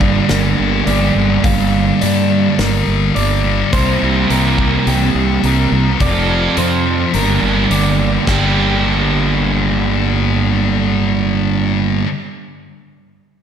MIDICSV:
0, 0, Header, 1, 6, 480
1, 0, Start_track
1, 0, Key_signature, -2, "minor"
1, 0, Tempo, 569801
1, 1212, Time_signature, 4, 2, 24, 8
1, 11309, End_track
2, 0, Start_track
2, 0, Title_t, "Clean electric guitar"
2, 0, Program_c, 0, 27
2, 0, Note_on_c, 0, 65, 76
2, 0, Note_on_c, 0, 74, 67
2, 0, Note_on_c, 0, 77, 70
2, 250, Note_on_c, 0, 70, 76
2, 724, Note_off_c, 0, 74, 0
2, 727, Note_on_c, 0, 74, 70
2, 1210, Note_off_c, 0, 74, 0
2, 1214, Note_off_c, 0, 77, 0
2, 1214, Note_on_c, 0, 77, 77
2, 1267, Note_off_c, 0, 65, 0
2, 1696, Note_on_c, 0, 74, 76
2, 2175, Note_off_c, 0, 74, 0
2, 2183, Note_off_c, 0, 70, 0
2, 2183, Note_on_c, 0, 70, 78
2, 2655, Note_on_c, 0, 74, 68
2, 2659, Note_off_c, 0, 70, 0
2, 3135, Note_off_c, 0, 74, 0
2, 3141, Note_on_c, 0, 72, 79
2, 3618, Note_off_c, 0, 72, 0
2, 3625, Note_on_c, 0, 70, 78
2, 4100, Note_off_c, 0, 70, 0
2, 4105, Note_on_c, 0, 67, 78
2, 4130, Note_off_c, 0, 77, 0
2, 4581, Note_off_c, 0, 67, 0
2, 4595, Note_on_c, 0, 70, 70
2, 5062, Note_off_c, 0, 70, 0
2, 5065, Note_on_c, 0, 74, 77
2, 5539, Note_off_c, 0, 74, 0
2, 5542, Note_on_c, 0, 72, 73
2, 6016, Note_off_c, 0, 72, 0
2, 6019, Note_on_c, 0, 70, 77
2, 6492, Note_off_c, 0, 70, 0
2, 6496, Note_on_c, 0, 74, 68
2, 6968, Note_on_c, 0, 67, 63
2, 6975, Note_off_c, 0, 74, 0
2, 7633, Note_off_c, 0, 67, 0
2, 11309, End_track
3, 0, Start_track
3, 0, Title_t, "Overdriven electric guitar"
3, 0, Program_c, 1, 29
3, 0, Note_on_c, 1, 43, 78
3, 0, Note_on_c, 1, 50, 70
3, 0, Note_on_c, 1, 55, 65
3, 0, Note_on_c, 1, 58, 75
3, 0, Note_on_c, 1, 62, 78
3, 0, Note_on_c, 1, 70, 81
3, 3128, Note_off_c, 1, 43, 0
3, 3130, Note_off_c, 1, 50, 0
3, 3132, Note_off_c, 1, 55, 0
3, 3134, Note_on_c, 1, 48, 72
3, 3137, Note_off_c, 1, 58, 0
3, 3139, Note_off_c, 1, 62, 0
3, 3142, Note_off_c, 1, 70, 0
3, 3142, Note_on_c, 1, 55, 74
3, 3147, Note_on_c, 1, 58, 74
3, 3153, Note_on_c, 1, 64, 77
3, 3159, Note_on_c, 1, 70, 89
3, 5049, Note_off_c, 1, 55, 0
3, 5053, Note_on_c, 1, 53, 74
3, 5055, Note_off_c, 1, 48, 0
3, 5059, Note_off_c, 1, 58, 0
3, 5062, Note_on_c, 1, 60, 63
3, 5065, Note_off_c, 1, 64, 0
3, 5068, Note_off_c, 1, 70, 0
3, 5071, Note_on_c, 1, 65, 77
3, 5078, Note_on_c, 1, 69, 83
3, 6010, Note_on_c, 1, 43, 65
3, 6014, Note_off_c, 1, 53, 0
3, 6019, Note_off_c, 1, 60, 0
3, 6020, Note_on_c, 1, 50, 56
3, 6023, Note_off_c, 1, 65, 0
3, 6023, Note_on_c, 1, 55, 61
3, 6027, Note_off_c, 1, 69, 0
3, 6030, Note_on_c, 1, 58, 69
3, 6034, Note_on_c, 1, 62, 65
3, 6038, Note_on_c, 1, 70, 65
3, 6955, Note_off_c, 1, 43, 0
3, 6965, Note_off_c, 1, 50, 0
3, 6965, Note_on_c, 1, 43, 76
3, 6971, Note_off_c, 1, 55, 0
3, 6975, Note_on_c, 1, 50, 81
3, 6979, Note_off_c, 1, 58, 0
3, 6981, Note_on_c, 1, 55, 87
3, 6985, Note_off_c, 1, 62, 0
3, 6987, Note_off_c, 1, 70, 0
3, 6989, Note_on_c, 1, 58, 106
3, 6994, Note_on_c, 1, 62, 98
3, 7001, Note_on_c, 1, 67, 98
3, 10152, Note_off_c, 1, 43, 0
3, 10156, Note_off_c, 1, 50, 0
3, 10160, Note_off_c, 1, 55, 0
3, 10163, Note_off_c, 1, 58, 0
3, 10166, Note_off_c, 1, 62, 0
3, 10170, Note_off_c, 1, 67, 0
3, 11309, End_track
4, 0, Start_track
4, 0, Title_t, "Distorted electric guitar"
4, 0, Program_c, 2, 30
4, 0, Note_on_c, 2, 43, 73
4, 0, Note_on_c, 2, 55, 60
4, 19, Note_on_c, 2, 50, 45
4, 718, Note_off_c, 2, 43, 0
4, 722, Note_on_c, 2, 43, 66
4, 724, Note_off_c, 2, 50, 0
4, 734, Note_on_c, 2, 50, 73
4, 742, Note_off_c, 2, 55, 0
4, 746, Note_on_c, 2, 55, 80
4, 971, Note_off_c, 2, 55, 0
4, 975, Note_on_c, 2, 55, 65
4, 984, Note_off_c, 2, 50, 0
4, 994, Note_on_c, 2, 50, 58
4, 1207, Note_off_c, 2, 43, 0
4, 1216, Note_on_c, 2, 43, 88
4, 1222, Note_off_c, 2, 50, 0
4, 1232, Note_on_c, 2, 50, 103
4, 1234, Note_off_c, 2, 55, 0
4, 1238, Note_on_c, 2, 55, 96
4, 1449, Note_off_c, 2, 55, 0
4, 1452, Note_on_c, 2, 55, 60
4, 1464, Note_off_c, 2, 50, 0
4, 1475, Note_on_c, 2, 50, 54
4, 1685, Note_off_c, 2, 43, 0
4, 1695, Note_on_c, 2, 43, 71
4, 1697, Note_off_c, 2, 50, 0
4, 1707, Note_on_c, 2, 50, 75
4, 1712, Note_off_c, 2, 55, 0
4, 1716, Note_on_c, 2, 55, 75
4, 1931, Note_off_c, 2, 55, 0
4, 1935, Note_on_c, 2, 55, 61
4, 1944, Note_off_c, 2, 50, 0
4, 1954, Note_on_c, 2, 50, 47
4, 2174, Note_off_c, 2, 43, 0
4, 2656, Note_on_c, 2, 43, 74
4, 2660, Note_off_c, 2, 50, 0
4, 2667, Note_off_c, 2, 55, 0
4, 2670, Note_on_c, 2, 50, 82
4, 2677, Note_on_c, 2, 55, 78
4, 2888, Note_off_c, 2, 55, 0
4, 2898, Note_on_c, 2, 55, 77
4, 2907, Note_off_c, 2, 50, 0
4, 2917, Note_on_c, 2, 50, 58
4, 3121, Note_off_c, 2, 43, 0
4, 3122, Note_off_c, 2, 55, 0
4, 3132, Note_off_c, 2, 50, 0
4, 3137, Note_on_c, 2, 48, 82
4, 3149, Note_on_c, 2, 55, 88
4, 3156, Note_on_c, 2, 60, 93
4, 3372, Note_off_c, 2, 60, 0
4, 3382, Note_on_c, 2, 60, 63
4, 3394, Note_off_c, 2, 55, 0
4, 3404, Note_on_c, 2, 55, 54
4, 3607, Note_off_c, 2, 48, 0
4, 3617, Note_on_c, 2, 48, 79
4, 3620, Note_off_c, 2, 55, 0
4, 3629, Note_off_c, 2, 60, 0
4, 3630, Note_on_c, 2, 55, 73
4, 3639, Note_on_c, 2, 60, 88
4, 3851, Note_off_c, 2, 60, 0
4, 3862, Note_on_c, 2, 60, 60
4, 3875, Note_off_c, 2, 55, 0
4, 3885, Note_on_c, 2, 55, 54
4, 4096, Note_off_c, 2, 48, 0
4, 4582, Note_on_c, 2, 48, 71
4, 4584, Note_off_c, 2, 55, 0
4, 4594, Note_on_c, 2, 55, 79
4, 4596, Note_off_c, 2, 60, 0
4, 4607, Note_on_c, 2, 60, 82
4, 4807, Note_off_c, 2, 60, 0
4, 4818, Note_on_c, 2, 60, 70
4, 4830, Note_off_c, 2, 55, 0
4, 4841, Note_on_c, 2, 55, 63
4, 5042, Note_off_c, 2, 60, 0
4, 5045, Note_off_c, 2, 48, 0
4, 5053, Note_on_c, 2, 41, 85
4, 5054, Note_off_c, 2, 55, 0
4, 5068, Note_on_c, 2, 48, 96
4, 5076, Note_on_c, 2, 53, 98
4, 5285, Note_off_c, 2, 53, 0
4, 5295, Note_on_c, 2, 53, 58
4, 5308, Note_off_c, 2, 48, 0
4, 5318, Note_on_c, 2, 48, 48
4, 5529, Note_off_c, 2, 41, 0
4, 5534, Note_off_c, 2, 48, 0
4, 5539, Note_on_c, 2, 41, 67
4, 5545, Note_on_c, 2, 48, 80
4, 5548, Note_off_c, 2, 53, 0
4, 5559, Note_on_c, 2, 53, 84
4, 5766, Note_off_c, 2, 53, 0
4, 5777, Note_on_c, 2, 53, 60
4, 5786, Note_off_c, 2, 48, 0
4, 5796, Note_on_c, 2, 48, 43
4, 6002, Note_off_c, 2, 53, 0
4, 6003, Note_off_c, 2, 41, 0
4, 6012, Note_off_c, 2, 48, 0
4, 6014, Note_on_c, 2, 43, 84
4, 6023, Note_on_c, 2, 50, 92
4, 6034, Note_on_c, 2, 55, 87
4, 6476, Note_off_c, 2, 43, 0
4, 6486, Note_off_c, 2, 50, 0
4, 6486, Note_on_c, 2, 43, 66
4, 6496, Note_off_c, 2, 55, 0
4, 6496, Note_on_c, 2, 50, 66
4, 6506, Note_on_c, 2, 55, 81
4, 6720, Note_off_c, 2, 55, 0
4, 6730, Note_on_c, 2, 55, 63
4, 6741, Note_off_c, 2, 50, 0
4, 6751, Note_on_c, 2, 50, 60
4, 6949, Note_off_c, 2, 43, 0
4, 6958, Note_off_c, 2, 55, 0
4, 6959, Note_on_c, 2, 43, 83
4, 6967, Note_off_c, 2, 50, 0
4, 6977, Note_on_c, 2, 50, 92
4, 6995, Note_on_c, 2, 55, 100
4, 10148, Note_off_c, 2, 43, 0
4, 10158, Note_off_c, 2, 50, 0
4, 10166, Note_off_c, 2, 55, 0
4, 11309, End_track
5, 0, Start_track
5, 0, Title_t, "Fingered electric bass"
5, 0, Program_c, 3, 33
5, 0, Note_on_c, 3, 31, 70
5, 159, Note_off_c, 3, 31, 0
5, 257, Note_on_c, 3, 31, 84
5, 449, Note_off_c, 3, 31, 0
5, 500, Note_on_c, 3, 31, 76
5, 692, Note_off_c, 3, 31, 0
5, 731, Note_on_c, 3, 31, 82
5, 926, Note_off_c, 3, 31, 0
5, 978, Note_on_c, 3, 31, 80
5, 1170, Note_off_c, 3, 31, 0
5, 1214, Note_on_c, 3, 31, 89
5, 1604, Note_off_c, 3, 31, 0
5, 1708, Note_on_c, 3, 43, 85
5, 2092, Note_off_c, 3, 43, 0
5, 2182, Note_on_c, 3, 31, 88
5, 2374, Note_off_c, 3, 31, 0
5, 2423, Note_on_c, 3, 31, 80
5, 2614, Note_off_c, 3, 31, 0
5, 2665, Note_on_c, 3, 31, 89
5, 3051, Note_off_c, 3, 31, 0
5, 3147, Note_on_c, 3, 36, 89
5, 3337, Note_off_c, 3, 36, 0
5, 3393, Note_on_c, 3, 36, 81
5, 3580, Note_off_c, 3, 36, 0
5, 3623, Note_on_c, 3, 36, 80
5, 4010, Note_off_c, 3, 36, 0
5, 4103, Note_on_c, 3, 36, 80
5, 4295, Note_off_c, 3, 36, 0
5, 4337, Note_on_c, 3, 36, 82
5, 4532, Note_off_c, 3, 36, 0
5, 4580, Note_on_c, 3, 36, 88
5, 4773, Note_off_c, 3, 36, 0
5, 4819, Note_on_c, 3, 36, 88
5, 5012, Note_off_c, 3, 36, 0
5, 5061, Note_on_c, 3, 29, 92
5, 5449, Note_off_c, 3, 29, 0
5, 5538, Note_on_c, 3, 41, 83
5, 5927, Note_off_c, 3, 41, 0
5, 6018, Note_on_c, 3, 31, 85
5, 6212, Note_off_c, 3, 31, 0
5, 6254, Note_on_c, 3, 31, 81
5, 6450, Note_off_c, 3, 31, 0
5, 6490, Note_on_c, 3, 31, 76
5, 6882, Note_off_c, 3, 31, 0
5, 6973, Note_on_c, 3, 31, 87
5, 10122, Note_off_c, 3, 31, 0
5, 11309, End_track
6, 0, Start_track
6, 0, Title_t, "Drums"
6, 7, Note_on_c, 9, 36, 70
6, 91, Note_off_c, 9, 36, 0
6, 246, Note_on_c, 9, 46, 42
6, 248, Note_on_c, 9, 38, 97
6, 331, Note_off_c, 9, 46, 0
6, 332, Note_off_c, 9, 38, 0
6, 733, Note_on_c, 9, 46, 42
6, 818, Note_off_c, 9, 46, 0
6, 1213, Note_on_c, 9, 46, 49
6, 1214, Note_on_c, 9, 36, 98
6, 1298, Note_off_c, 9, 36, 0
6, 1298, Note_off_c, 9, 46, 0
6, 1698, Note_on_c, 9, 46, 53
6, 1782, Note_off_c, 9, 46, 0
6, 2181, Note_on_c, 9, 46, 51
6, 2183, Note_on_c, 9, 38, 87
6, 2265, Note_off_c, 9, 46, 0
6, 2267, Note_off_c, 9, 38, 0
6, 2663, Note_on_c, 9, 46, 49
6, 2747, Note_off_c, 9, 46, 0
6, 3140, Note_on_c, 9, 46, 49
6, 3142, Note_on_c, 9, 36, 94
6, 3225, Note_off_c, 9, 46, 0
6, 3226, Note_off_c, 9, 36, 0
6, 3625, Note_on_c, 9, 46, 43
6, 3709, Note_off_c, 9, 46, 0
6, 3862, Note_on_c, 9, 36, 66
6, 3946, Note_off_c, 9, 36, 0
6, 4103, Note_on_c, 9, 46, 44
6, 4187, Note_off_c, 9, 46, 0
6, 4579, Note_on_c, 9, 46, 41
6, 4664, Note_off_c, 9, 46, 0
6, 5057, Note_on_c, 9, 46, 44
6, 5059, Note_on_c, 9, 36, 93
6, 5141, Note_off_c, 9, 46, 0
6, 5143, Note_off_c, 9, 36, 0
6, 5534, Note_on_c, 9, 46, 48
6, 5619, Note_off_c, 9, 46, 0
6, 6013, Note_on_c, 9, 46, 44
6, 6097, Note_off_c, 9, 46, 0
6, 6494, Note_on_c, 9, 46, 48
6, 6578, Note_off_c, 9, 46, 0
6, 6969, Note_on_c, 9, 49, 80
6, 6970, Note_on_c, 9, 36, 91
6, 6971, Note_on_c, 9, 38, 85
6, 7053, Note_off_c, 9, 49, 0
6, 7054, Note_off_c, 9, 36, 0
6, 7055, Note_off_c, 9, 38, 0
6, 11309, End_track
0, 0, End_of_file